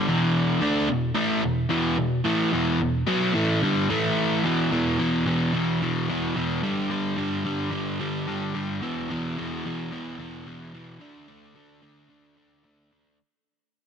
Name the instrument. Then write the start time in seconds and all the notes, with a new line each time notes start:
overdriven electric guitar
0.07 E2 B2 E3
0.61 D3 A3 D4
0.88 E2 B2
1.15 A2 E3 A3
1.42 E2 B2
1.69 E2 B2 E3
1.98 E2 B2
2.25 A2 E3 A3
2.52 E2 B2 E3
2.80 E2 B2
3.07 B2 F#3 B3
3.34 A2 E3 A3
3.62 G2 D3 G3
3.89 A2 E3 A3
4.44 E2 B2 E3
4.71 E2 B2 E3
4.99 E2 B2 E3
5.26 E2 B2 E3
5.53 E2 B2 E3
5.81 E2 B2 E3
6.09 E2 B2 E3
6.36 E2 B2 E3
6.62 G2 D3 G3
6.90 G2 D3 G3
7.16 G2 D3 G3
7.45 G2 D3 G3
7.71 G2 D3 G3
7.99 G2 D3 G3
8.27 G2 D3 G3
8.54 G2 D3 G3
8.81 E2 B2 E3
9.09 E2 B2 E3
9.37 E2 B2 E3
9.65 E2 B2 E3
9.91 E2 B2 E3
10.18 E2 B2 E3
10.46 E2 B2 E3
10.74 E2 B2 E3
11.00 D3 A3 D4
11.28 D3 A3 D4
11.55 D3 A3 D4
11.82 D3 A3 D4
12.09 D3 A3 D4
12.36 D3 A3 D4
12.64 D3 A3 D4
12.92 D3 A3 D4